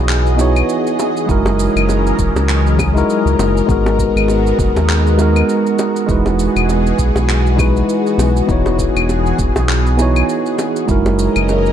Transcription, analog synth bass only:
0.00 0.63 B1 loud
1.29 1.69 F#1 loud
1.76 2.13 F#1 medium
2.19 2.31 E1 loud
2.36 3.03 C#2 medium
3.26 3.35 C#2 loud
3.38 3.62 F#1 loud
3.69 4.09 G#1 loud
4.16 4.53 G#1 medium
4.59 4.71 F#1 loud
4.76 5.43 D#2 loud
6.09 6.49 E1 loud
6.56 6.93 E1 medium
6.99 7.11 B1 medium
7.15 7.83 B1 loud
8.18 8.42 B1 loud
8.49 8.89 E1 loud
8.96 9.33 E1 medium
9.38 9.51 E1 loud
9.56 10.23 B1 loud
10.89 11.29 F#1 medium
11.36 11.73 F#1 medium

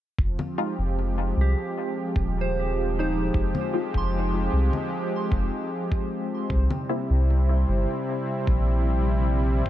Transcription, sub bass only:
0.19 0.37 F1 medium
0.79 1.33 F1 medium
1.37 1.55 C2 medium
2.16 3.31 D#1 medium
3.34 3.52 F1 medium
3.94 4.49 F1 medium
4.53 4.71 C2 medium
5.32 5.50 F1 medium
6.50 6.68 C2 medium
7.10 7.65 C2 medium
7.69 7.87 G1 medium
8.47 9.62 A#1 medium
9.66 9.70 C2 medium

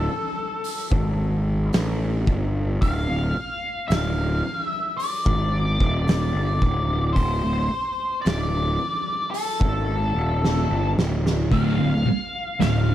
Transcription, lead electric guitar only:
0.00 1.70 A4 medium
2.82 3.87 F5 loud
3.88 4.63 F5 medium
4.63 5.01 E5 medium
4.97 7.11 D5 loud
7.13 8.21 C5 medium
8.22 9.28 D5 medium
9.31 10.91 A4 medium
11.52 12.60 F5 loud
12.61 12.95 F5 loud

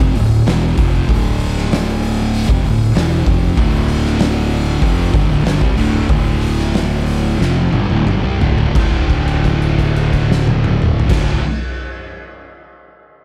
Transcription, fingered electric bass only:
0.00 0.14 F1 medium
0.16 0.45 D1 medium
0.46 0.75 E1 loud
0.78 1.07 F1 loud
1.09 2.45 D1 loud
2.49 2.63 F1 medium
2.64 2.93 D1 medium
2.95 3.24 E1 loud
3.26 3.55 F1 loud
3.57 4.78 D1 loud
4.82 5.11 F1 loud
5.14 5.28 G1 loud
5.29 5.44 D1 loud
5.45 5.60 G1 loud
5.61 5.76 C2 medium
5.77 6.07 D1 loud
6.09 7.36 D1 loud
7.41 7.71 F1 loud
7.72 7.88 G1 loud
7.90 8.05 D1 loud
8.06 8.22 G1 loud
8.23 8.39 C2 loud
8.40 8.73 D1 medium
8.75 10.97 D1 loud
11.09 11.38 D1 loud

